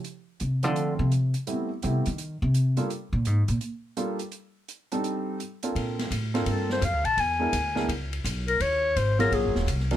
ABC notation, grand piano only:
X:1
M:4/4
L:1/8
Q:"Swing" 1/4=168
K:Bb
V:1 name="Grand piano"
z3 [F,A,CDF]3 z2 | [G,A,=B,C=E] z [G,A,B,CE] z4 [G,_B,DFA] | z6 [G,B,DFA] z | z3 [G,CDEA]3 z [B,CDFA]- |
[B,CDFA]2 z [B,CDFA]3 z2 | z [^G,=B,D=E^A] z [G,B,DEA] z4 | z3 [_G,B,_DF_A]3 z [F,C=D=EB] |]